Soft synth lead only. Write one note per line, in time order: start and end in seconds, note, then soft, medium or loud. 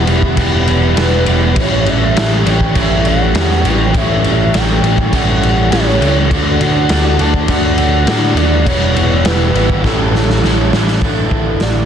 0.00 0.34 B4 medium
0.98 1.62 B4 medium
1.61 1.91 C#5 medium
1.90 2.51 E5 loud
2.49 2.77 G5 medium
2.78 3.09 E5 loud
3.08 3.69 F#5 loud
3.67 3.99 G5 loud
3.97 4.58 E5 loud
4.57 5.15 G5 loud
5.15 5.72 F#5 loud
5.71 6.34 C#5 loud
6.32 6.62 D5 loud
6.61 7.22 F#5 loud
7.21 7.49 A5 loud
7.50 8.39 F#5 loud
8.37 8.68 D5 loud
8.67 9.28 C#5 loud
9.26 9.83 B4 loud
9.84 10.68 A4 loud
11.04 11.63 A4 medium
11.62 11.85 D5 loud